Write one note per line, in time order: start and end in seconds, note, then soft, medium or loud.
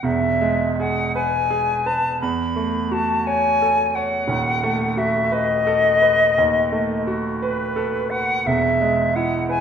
0.03 2.17 E1 medium
0.03 2.17 E2 medium
0.03 0.79 E5 medium
0.41 1.01 G#3 medium
0.80 1.37 G#4 medium
0.80 1.14 F#5 medium
1.15 1.72 B4 medium
1.15 1.88 G#5 loud
1.51 2.08 G#4 medium
1.86 2.22 B4 medium
1.86 2.20 A5 medium
2.21 4.25 E2 medium
2.21 2.93 B5 medium
2.56 3.12 A3 medium
2.92 3.47 F#4 medium
2.92 3.27 A5 medium
3.26 3.82 C#5 medium
3.26 3.96 G#5 loud
3.62 4.16 A4 medium
3.95 4.29 C#5 medium
3.95 4.99 F#5 loud
4.28 6.33 D#1 medium
4.28 6.34 D#2 medium
4.63 5.19 A3 medium
4.97 5.54 F#4 medium
4.97 5.34 E5 medium
5.32 5.88 B4 medium
5.32 7.15 D#5 loud
5.67 6.23 A4 medium
6.02 6.58 B4 medium
6.38 8.43 D#2 medium
6.72 7.28 A3 soft
7.07 7.62 F#4 medium
7.42 8.11 B4 medium
7.42 7.98 B4 medium
7.76 8.33 A4 medium
8.10 8.47 B4 medium
8.10 8.48 F#5 medium
8.46 9.60 E1 medium
8.46 9.60 E2 medium
8.46 9.17 E5 medium
8.81 9.35 G#3 medium
9.15 9.60 E4 medium
9.15 9.49 F#5 loud
9.49 9.60 B4 medium
9.49 9.60 G#5 loud